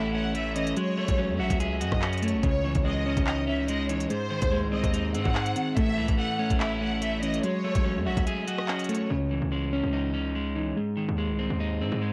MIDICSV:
0, 0, Header, 1, 6, 480
1, 0, Start_track
1, 0, Key_signature, 4, "minor"
1, 0, Tempo, 416667
1, 884, Time_signature, 4, 2, 24, 8
1, 13971, End_track
2, 0, Start_track
2, 0, Title_t, "Violin section"
2, 0, Program_c, 0, 48
2, 0, Note_on_c, 0, 76, 84
2, 152, Note_off_c, 0, 76, 0
2, 162, Note_on_c, 0, 78, 86
2, 391, Note_off_c, 0, 78, 0
2, 405, Note_on_c, 0, 76, 93
2, 632, Note_off_c, 0, 76, 0
2, 645, Note_on_c, 0, 75, 85
2, 872, Note_off_c, 0, 75, 0
2, 884, Note_on_c, 0, 73, 111
2, 1560, Note_off_c, 0, 73, 0
2, 1605, Note_on_c, 0, 76, 76
2, 2055, Note_off_c, 0, 76, 0
2, 2084, Note_on_c, 0, 75, 79
2, 2535, Note_off_c, 0, 75, 0
2, 2564, Note_on_c, 0, 73, 79
2, 2792, Note_off_c, 0, 73, 0
2, 2805, Note_on_c, 0, 73, 108
2, 3255, Note_off_c, 0, 73, 0
2, 3285, Note_on_c, 0, 75, 91
2, 3735, Note_off_c, 0, 75, 0
2, 3764, Note_on_c, 0, 75, 87
2, 3991, Note_off_c, 0, 75, 0
2, 4004, Note_on_c, 0, 76, 83
2, 4232, Note_off_c, 0, 76, 0
2, 4242, Note_on_c, 0, 75, 85
2, 4471, Note_off_c, 0, 75, 0
2, 4482, Note_on_c, 0, 73, 90
2, 4710, Note_off_c, 0, 73, 0
2, 4722, Note_on_c, 0, 72, 115
2, 5399, Note_off_c, 0, 72, 0
2, 5442, Note_on_c, 0, 75, 78
2, 5894, Note_off_c, 0, 75, 0
2, 5922, Note_on_c, 0, 78, 90
2, 6599, Note_off_c, 0, 78, 0
2, 6643, Note_on_c, 0, 76, 120
2, 7094, Note_off_c, 0, 76, 0
2, 7121, Note_on_c, 0, 78, 91
2, 7573, Note_off_c, 0, 78, 0
2, 7601, Note_on_c, 0, 76, 84
2, 7830, Note_off_c, 0, 76, 0
2, 7841, Note_on_c, 0, 78, 87
2, 8070, Note_off_c, 0, 78, 0
2, 8085, Note_on_c, 0, 76, 93
2, 8312, Note_off_c, 0, 76, 0
2, 8323, Note_on_c, 0, 75, 85
2, 8551, Note_off_c, 0, 75, 0
2, 8564, Note_on_c, 0, 73, 108
2, 9240, Note_off_c, 0, 73, 0
2, 9283, Note_on_c, 0, 76, 76
2, 9734, Note_off_c, 0, 76, 0
2, 9763, Note_on_c, 0, 75, 81
2, 10214, Note_off_c, 0, 75, 0
2, 10244, Note_on_c, 0, 73, 80
2, 10471, Note_off_c, 0, 73, 0
2, 13971, End_track
3, 0, Start_track
3, 0, Title_t, "Clean electric guitar"
3, 0, Program_c, 1, 27
3, 0, Note_on_c, 1, 45, 97
3, 0, Note_on_c, 1, 52, 85
3, 0, Note_on_c, 1, 57, 95
3, 0, Note_on_c, 1, 61, 92
3, 0, Note_on_c, 1, 64, 107
3, 150, Note_off_c, 1, 61, 0
3, 159, Note_off_c, 1, 45, 0
3, 164, Note_on_c, 1, 61, 94
3, 389, Note_off_c, 1, 57, 0
3, 403, Note_off_c, 1, 52, 0
3, 403, Note_on_c, 1, 57, 91
3, 644, Note_on_c, 1, 52, 82
3, 882, Note_off_c, 1, 52, 0
3, 883, Note_off_c, 1, 57, 0
3, 883, Note_off_c, 1, 61, 0
3, 883, Note_off_c, 1, 64, 0
3, 887, Note_on_c, 1, 56, 99
3, 1123, Note_on_c, 1, 57, 87
3, 1355, Note_on_c, 1, 61, 84
3, 1609, Note_on_c, 1, 66, 96
3, 1841, Note_off_c, 1, 66, 0
3, 1845, Note_on_c, 1, 68, 108
3, 2076, Note_off_c, 1, 61, 0
3, 2081, Note_on_c, 1, 66, 93
3, 2085, Note_off_c, 1, 56, 0
3, 2323, Note_off_c, 1, 57, 0
3, 2329, Note_on_c, 1, 61, 87
3, 2560, Note_on_c, 1, 57, 76
3, 2801, Note_off_c, 1, 57, 0
3, 2802, Note_off_c, 1, 66, 0
3, 2804, Note_off_c, 1, 68, 0
3, 2806, Note_off_c, 1, 61, 0
3, 2807, Note_on_c, 1, 49, 102
3, 3042, Note_on_c, 1, 52, 79
3, 3284, Note_on_c, 1, 56, 93
3, 3525, Note_on_c, 1, 61, 93
3, 3757, Note_on_c, 1, 63, 96
3, 3985, Note_off_c, 1, 61, 0
3, 3999, Note_on_c, 1, 61, 88
3, 4005, Note_off_c, 1, 49, 0
3, 4236, Note_off_c, 1, 56, 0
3, 4243, Note_off_c, 1, 52, 0
3, 4250, Note_on_c, 1, 56, 87
3, 4483, Note_on_c, 1, 52, 83
3, 4720, Note_off_c, 1, 63, 0
3, 4721, Note_off_c, 1, 61, 0
3, 4723, Note_off_c, 1, 52, 0
3, 4726, Note_on_c, 1, 44, 100
3, 4727, Note_off_c, 1, 56, 0
3, 4956, Note_on_c, 1, 51, 84
3, 5200, Note_on_c, 1, 56, 90
3, 5437, Note_on_c, 1, 60, 88
3, 5685, Note_on_c, 1, 63, 93
3, 5917, Note_off_c, 1, 60, 0
3, 5925, Note_off_c, 1, 44, 0
3, 5931, Note_on_c, 1, 60, 91
3, 6151, Note_off_c, 1, 56, 0
3, 6160, Note_off_c, 1, 51, 0
3, 6165, Note_on_c, 1, 56, 92
3, 6399, Note_on_c, 1, 51, 79
3, 6633, Note_off_c, 1, 51, 0
3, 6637, Note_on_c, 1, 45, 98
3, 6644, Note_off_c, 1, 56, 0
3, 6644, Note_off_c, 1, 63, 0
3, 6647, Note_off_c, 1, 60, 0
3, 6884, Note_on_c, 1, 52, 85
3, 7116, Note_on_c, 1, 57, 95
3, 7362, Note_on_c, 1, 61, 94
3, 7604, Note_on_c, 1, 64, 106
3, 7831, Note_off_c, 1, 61, 0
3, 7840, Note_off_c, 1, 45, 0
3, 7844, Note_on_c, 1, 61, 92
3, 8067, Note_off_c, 1, 57, 0
3, 8081, Note_on_c, 1, 57, 91
3, 8084, Note_off_c, 1, 52, 0
3, 8325, Note_on_c, 1, 52, 82
3, 8562, Note_off_c, 1, 57, 0
3, 8563, Note_off_c, 1, 52, 0
3, 8563, Note_off_c, 1, 64, 0
3, 8564, Note_off_c, 1, 61, 0
3, 8567, Note_on_c, 1, 56, 96
3, 8805, Note_on_c, 1, 57, 88
3, 9038, Note_on_c, 1, 61, 87
3, 9290, Note_on_c, 1, 66, 94
3, 9522, Note_off_c, 1, 66, 0
3, 9527, Note_on_c, 1, 68, 104
3, 9757, Note_off_c, 1, 61, 0
3, 9762, Note_on_c, 1, 66, 94
3, 9765, Note_off_c, 1, 56, 0
3, 10004, Note_off_c, 1, 57, 0
3, 10009, Note_on_c, 1, 61, 88
3, 10239, Note_on_c, 1, 57, 75
3, 10481, Note_off_c, 1, 57, 0
3, 10483, Note_off_c, 1, 66, 0
3, 10485, Note_off_c, 1, 68, 0
3, 10486, Note_off_c, 1, 61, 0
3, 10487, Note_on_c, 1, 49, 98
3, 10723, Note_on_c, 1, 52, 79
3, 10965, Note_on_c, 1, 56, 90
3, 11206, Note_on_c, 1, 61, 88
3, 11438, Note_on_c, 1, 63, 93
3, 11664, Note_off_c, 1, 61, 0
3, 11678, Note_on_c, 1, 61, 88
3, 11685, Note_off_c, 1, 49, 0
3, 11915, Note_off_c, 1, 56, 0
3, 11923, Note_off_c, 1, 52, 0
3, 11929, Note_on_c, 1, 56, 81
3, 12163, Note_on_c, 1, 52, 74
3, 12401, Note_off_c, 1, 61, 0
3, 12401, Note_off_c, 1, 63, 0
3, 12403, Note_off_c, 1, 52, 0
3, 12406, Note_off_c, 1, 56, 0
3, 12407, Note_on_c, 1, 44, 90
3, 12637, Note_on_c, 1, 51, 79
3, 12880, Note_on_c, 1, 56, 89
3, 13118, Note_on_c, 1, 60, 80
3, 13366, Note_on_c, 1, 63, 91
3, 13598, Note_off_c, 1, 60, 0
3, 13605, Note_off_c, 1, 44, 0
3, 13611, Note_on_c, 1, 60, 87
3, 13830, Note_off_c, 1, 56, 0
3, 13840, Note_off_c, 1, 51, 0
3, 13844, Note_on_c, 1, 56, 87
3, 13971, Note_off_c, 1, 56, 0
3, 13971, Note_off_c, 1, 60, 0
3, 13971, Note_off_c, 1, 63, 0
3, 13971, End_track
4, 0, Start_track
4, 0, Title_t, "Synth keys"
4, 0, Program_c, 2, 88
4, 0, Note_on_c, 2, 57, 82
4, 150, Note_off_c, 2, 57, 0
4, 164, Note_on_c, 2, 57, 81
4, 643, Note_on_c, 2, 61, 81
4, 883, Note_off_c, 2, 61, 0
4, 884, Note_off_c, 2, 57, 0
4, 885, Note_on_c, 2, 54, 92
4, 1110, Note_off_c, 2, 54, 0
4, 1124, Note_on_c, 2, 54, 73
4, 1351, Note_off_c, 2, 54, 0
4, 1364, Note_on_c, 2, 54, 86
4, 1589, Note_off_c, 2, 54, 0
4, 1603, Note_on_c, 2, 54, 94
4, 1830, Note_off_c, 2, 54, 0
4, 1843, Note_on_c, 2, 54, 71
4, 2073, Note_off_c, 2, 54, 0
4, 2087, Note_on_c, 2, 54, 75
4, 2562, Note_on_c, 2, 57, 74
4, 2802, Note_off_c, 2, 57, 0
4, 2803, Note_on_c, 2, 61, 84
4, 2805, Note_off_c, 2, 54, 0
4, 3031, Note_off_c, 2, 61, 0
4, 3045, Note_on_c, 2, 61, 79
4, 3270, Note_off_c, 2, 61, 0
4, 3284, Note_on_c, 2, 61, 76
4, 3513, Note_off_c, 2, 61, 0
4, 3527, Note_on_c, 2, 61, 97
4, 3750, Note_off_c, 2, 61, 0
4, 3764, Note_on_c, 2, 61, 76
4, 3992, Note_off_c, 2, 61, 0
4, 4006, Note_on_c, 2, 61, 80
4, 4483, Note_on_c, 2, 63, 78
4, 4723, Note_off_c, 2, 63, 0
4, 4724, Note_on_c, 2, 56, 81
4, 4725, Note_off_c, 2, 61, 0
4, 4948, Note_off_c, 2, 56, 0
4, 4961, Note_on_c, 2, 56, 77
4, 5191, Note_off_c, 2, 56, 0
4, 5205, Note_on_c, 2, 56, 79
4, 5431, Note_off_c, 2, 56, 0
4, 5444, Note_on_c, 2, 56, 83
4, 5669, Note_off_c, 2, 56, 0
4, 5683, Note_on_c, 2, 56, 79
4, 5912, Note_off_c, 2, 56, 0
4, 5926, Note_on_c, 2, 56, 77
4, 6404, Note_on_c, 2, 60, 81
4, 6644, Note_off_c, 2, 60, 0
4, 6644, Note_on_c, 2, 57, 90
4, 6645, Note_off_c, 2, 56, 0
4, 6869, Note_off_c, 2, 57, 0
4, 6882, Note_on_c, 2, 57, 80
4, 7110, Note_off_c, 2, 57, 0
4, 7124, Note_on_c, 2, 57, 75
4, 7346, Note_off_c, 2, 57, 0
4, 7359, Note_on_c, 2, 57, 89
4, 7589, Note_off_c, 2, 57, 0
4, 7603, Note_on_c, 2, 57, 84
4, 7830, Note_off_c, 2, 57, 0
4, 7844, Note_on_c, 2, 57, 81
4, 8323, Note_on_c, 2, 61, 79
4, 8563, Note_off_c, 2, 61, 0
4, 8564, Note_off_c, 2, 57, 0
4, 8567, Note_on_c, 2, 54, 92
4, 8791, Note_off_c, 2, 54, 0
4, 8805, Note_on_c, 2, 54, 75
4, 9032, Note_off_c, 2, 54, 0
4, 9046, Note_on_c, 2, 54, 84
4, 9271, Note_off_c, 2, 54, 0
4, 9285, Note_on_c, 2, 54, 94
4, 9511, Note_off_c, 2, 54, 0
4, 9525, Note_on_c, 2, 54, 75
4, 9753, Note_off_c, 2, 54, 0
4, 9767, Note_on_c, 2, 54, 74
4, 10242, Note_on_c, 2, 57, 76
4, 10482, Note_off_c, 2, 57, 0
4, 10482, Note_on_c, 2, 61, 82
4, 10485, Note_off_c, 2, 54, 0
4, 10710, Note_off_c, 2, 61, 0
4, 10724, Note_on_c, 2, 61, 74
4, 10949, Note_off_c, 2, 61, 0
4, 10963, Note_on_c, 2, 61, 72
4, 11193, Note_off_c, 2, 61, 0
4, 11207, Note_on_c, 2, 61, 92
4, 11430, Note_off_c, 2, 61, 0
4, 11444, Note_on_c, 2, 61, 70
4, 11671, Note_off_c, 2, 61, 0
4, 11685, Note_on_c, 2, 61, 75
4, 12163, Note_on_c, 2, 63, 73
4, 12403, Note_off_c, 2, 63, 0
4, 12403, Note_on_c, 2, 56, 76
4, 12404, Note_off_c, 2, 61, 0
4, 12628, Note_off_c, 2, 56, 0
4, 12642, Note_on_c, 2, 56, 70
4, 12872, Note_off_c, 2, 56, 0
4, 12886, Note_on_c, 2, 56, 75
4, 13113, Note_off_c, 2, 56, 0
4, 13127, Note_on_c, 2, 56, 78
4, 13350, Note_off_c, 2, 56, 0
4, 13364, Note_on_c, 2, 56, 75
4, 13593, Note_off_c, 2, 56, 0
4, 13607, Note_on_c, 2, 56, 74
4, 13971, Note_off_c, 2, 56, 0
4, 13971, End_track
5, 0, Start_track
5, 0, Title_t, "808-style bass"
5, 0, Program_c, 3, 38
5, 0, Note_on_c, 3, 33, 107
5, 840, Note_off_c, 3, 33, 0
5, 1250, Note_on_c, 3, 33, 108
5, 1489, Note_on_c, 3, 42, 99
5, 1506, Note_off_c, 3, 33, 0
5, 1601, Note_on_c, 3, 33, 98
5, 1618, Note_off_c, 3, 42, 0
5, 1723, Note_off_c, 3, 33, 0
5, 1730, Note_on_c, 3, 37, 107
5, 2081, Note_on_c, 3, 42, 101
5, 2098, Note_off_c, 3, 37, 0
5, 2203, Note_off_c, 3, 42, 0
5, 2211, Note_on_c, 3, 42, 110
5, 2690, Note_on_c, 3, 33, 98
5, 2707, Note_off_c, 3, 42, 0
5, 2797, Note_off_c, 3, 33, 0
5, 2802, Note_on_c, 3, 37, 110
5, 3155, Note_off_c, 3, 37, 0
5, 3170, Note_on_c, 3, 37, 103
5, 3631, Note_off_c, 3, 37, 0
5, 3651, Note_on_c, 3, 37, 104
5, 4680, Note_off_c, 3, 37, 0
5, 5090, Note_on_c, 3, 39, 111
5, 5329, Note_on_c, 3, 36, 102
5, 5347, Note_off_c, 3, 39, 0
5, 5558, Note_off_c, 3, 36, 0
5, 5571, Note_on_c, 3, 39, 110
5, 5922, Note_on_c, 3, 44, 107
5, 5940, Note_off_c, 3, 39, 0
5, 6044, Note_off_c, 3, 44, 0
5, 6051, Note_on_c, 3, 44, 108
5, 6389, Note_off_c, 3, 44, 0
5, 6643, Note_on_c, 3, 33, 105
5, 6883, Note_on_c, 3, 37, 100
5, 6900, Note_off_c, 3, 33, 0
5, 7004, Note_off_c, 3, 37, 0
5, 7011, Note_on_c, 3, 33, 105
5, 7241, Note_off_c, 3, 33, 0
5, 7491, Note_on_c, 3, 33, 106
5, 8520, Note_off_c, 3, 33, 0
5, 8930, Note_on_c, 3, 33, 108
5, 9172, Note_on_c, 3, 42, 97
5, 9189, Note_off_c, 3, 33, 0
5, 9284, Note_on_c, 3, 33, 102
5, 9301, Note_off_c, 3, 42, 0
5, 9404, Note_off_c, 3, 33, 0
5, 9411, Note_on_c, 3, 37, 109
5, 9524, Note_off_c, 3, 37, 0
5, 10484, Note_on_c, 3, 37, 111
5, 10836, Note_off_c, 3, 37, 0
5, 10850, Note_on_c, 3, 37, 102
5, 11311, Note_off_c, 3, 37, 0
5, 11330, Note_on_c, 3, 37, 100
5, 12360, Note_off_c, 3, 37, 0
5, 12771, Note_on_c, 3, 39, 102
5, 13011, Note_on_c, 3, 36, 97
5, 13028, Note_off_c, 3, 39, 0
5, 13239, Note_off_c, 3, 36, 0
5, 13251, Note_on_c, 3, 39, 104
5, 13604, Note_on_c, 3, 44, 102
5, 13621, Note_off_c, 3, 39, 0
5, 13724, Note_off_c, 3, 44, 0
5, 13731, Note_on_c, 3, 44, 99
5, 13971, Note_off_c, 3, 44, 0
5, 13971, End_track
6, 0, Start_track
6, 0, Title_t, "Drums"
6, 403, Note_on_c, 9, 42, 81
6, 518, Note_off_c, 9, 42, 0
6, 643, Note_on_c, 9, 42, 90
6, 758, Note_off_c, 9, 42, 0
6, 770, Note_on_c, 9, 42, 69
6, 882, Note_off_c, 9, 42, 0
6, 882, Note_on_c, 9, 42, 70
6, 997, Note_off_c, 9, 42, 0
6, 1247, Note_on_c, 9, 42, 80
6, 1250, Note_on_c, 9, 36, 109
6, 1362, Note_off_c, 9, 42, 0
6, 1365, Note_off_c, 9, 36, 0
6, 1730, Note_on_c, 9, 36, 95
6, 1731, Note_on_c, 9, 42, 77
6, 1846, Note_off_c, 9, 36, 0
6, 1846, Note_off_c, 9, 42, 0
6, 1846, Note_on_c, 9, 42, 91
6, 1961, Note_off_c, 9, 42, 0
6, 2085, Note_on_c, 9, 42, 82
6, 2201, Note_off_c, 9, 42, 0
6, 2211, Note_on_c, 9, 36, 89
6, 2211, Note_on_c, 9, 37, 104
6, 2323, Note_on_c, 9, 39, 111
6, 2326, Note_off_c, 9, 36, 0
6, 2326, Note_off_c, 9, 37, 0
6, 2439, Note_off_c, 9, 39, 0
6, 2451, Note_on_c, 9, 42, 49
6, 2507, Note_off_c, 9, 42, 0
6, 2507, Note_on_c, 9, 42, 63
6, 2564, Note_off_c, 9, 42, 0
6, 2564, Note_on_c, 9, 42, 73
6, 2626, Note_off_c, 9, 42, 0
6, 2626, Note_on_c, 9, 42, 84
6, 2742, Note_off_c, 9, 42, 0
6, 2802, Note_on_c, 9, 36, 126
6, 2802, Note_on_c, 9, 42, 70
6, 2918, Note_off_c, 9, 36, 0
6, 2918, Note_off_c, 9, 42, 0
6, 3167, Note_on_c, 9, 42, 78
6, 3170, Note_on_c, 9, 36, 105
6, 3282, Note_off_c, 9, 42, 0
6, 3285, Note_off_c, 9, 36, 0
6, 3650, Note_on_c, 9, 36, 92
6, 3651, Note_on_c, 9, 42, 78
6, 3763, Note_on_c, 9, 39, 115
6, 3765, Note_off_c, 9, 36, 0
6, 3766, Note_off_c, 9, 42, 0
6, 3878, Note_off_c, 9, 39, 0
6, 4243, Note_on_c, 9, 42, 82
6, 4358, Note_off_c, 9, 42, 0
6, 4484, Note_on_c, 9, 42, 89
6, 4599, Note_off_c, 9, 42, 0
6, 4611, Note_on_c, 9, 42, 71
6, 4724, Note_off_c, 9, 42, 0
6, 4724, Note_on_c, 9, 42, 69
6, 4839, Note_off_c, 9, 42, 0
6, 5088, Note_on_c, 9, 42, 78
6, 5090, Note_on_c, 9, 36, 108
6, 5203, Note_off_c, 9, 42, 0
6, 5206, Note_off_c, 9, 36, 0
6, 5571, Note_on_c, 9, 36, 92
6, 5572, Note_on_c, 9, 42, 75
6, 5686, Note_off_c, 9, 36, 0
6, 5686, Note_off_c, 9, 42, 0
6, 5686, Note_on_c, 9, 42, 93
6, 5801, Note_off_c, 9, 42, 0
6, 5926, Note_on_c, 9, 42, 84
6, 6041, Note_off_c, 9, 42, 0
6, 6051, Note_on_c, 9, 36, 89
6, 6163, Note_on_c, 9, 39, 109
6, 6166, Note_off_c, 9, 36, 0
6, 6278, Note_off_c, 9, 39, 0
6, 6288, Note_on_c, 9, 42, 78
6, 6403, Note_off_c, 9, 42, 0
6, 6403, Note_on_c, 9, 42, 87
6, 6518, Note_off_c, 9, 42, 0
6, 6643, Note_on_c, 9, 36, 127
6, 6643, Note_on_c, 9, 42, 71
6, 6758, Note_off_c, 9, 36, 0
6, 6758, Note_off_c, 9, 42, 0
6, 7008, Note_on_c, 9, 42, 77
6, 7010, Note_on_c, 9, 36, 108
6, 7123, Note_off_c, 9, 42, 0
6, 7126, Note_off_c, 9, 36, 0
6, 7491, Note_on_c, 9, 36, 91
6, 7492, Note_on_c, 9, 42, 75
6, 7604, Note_on_c, 9, 39, 116
6, 7606, Note_off_c, 9, 36, 0
6, 7608, Note_off_c, 9, 42, 0
6, 7719, Note_off_c, 9, 39, 0
6, 8084, Note_on_c, 9, 42, 82
6, 8200, Note_off_c, 9, 42, 0
6, 8325, Note_on_c, 9, 42, 86
6, 8440, Note_off_c, 9, 42, 0
6, 8453, Note_on_c, 9, 42, 70
6, 8564, Note_off_c, 9, 42, 0
6, 8564, Note_on_c, 9, 42, 70
6, 8680, Note_off_c, 9, 42, 0
6, 8928, Note_on_c, 9, 42, 80
6, 8931, Note_on_c, 9, 36, 108
6, 9043, Note_off_c, 9, 42, 0
6, 9046, Note_off_c, 9, 36, 0
6, 9411, Note_on_c, 9, 36, 93
6, 9412, Note_on_c, 9, 42, 78
6, 9525, Note_off_c, 9, 42, 0
6, 9525, Note_on_c, 9, 42, 91
6, 9526, Note_off_c, 9, 36, 0
6, 9640, Note_off_c, 9, 42, 0
6, 9764, Note_on_c, 9, 42, 83
6, 9879, Note_off_c, 9, 42, 0
6, 9889, Note_on_c, 9, 37, 103
6, 10002, Note_on_c, 9, 39, 110
6, 10004, Note_off_c, 9, 37, 0
6, 10117, Note_off_c, 9, 39, 0
6, 10129, Note_on_c, 9, 42, 51
6, 10186, Note_off_c, 9, 42, 0
6, 10186, Note_on_c, 9, 42, 62
6, 10243, Note_off_c, 9, 42, 0
6, 10243, Note_on_c, 9, 42, 72
6, 10306, Note_off_c, 9, 42, 0
6, 10306, Note_on_c, 9, 42, 86
6, 10421, Note_off_c, 9, 42, 0
6, 13971, End_track
0, 0, End_of_file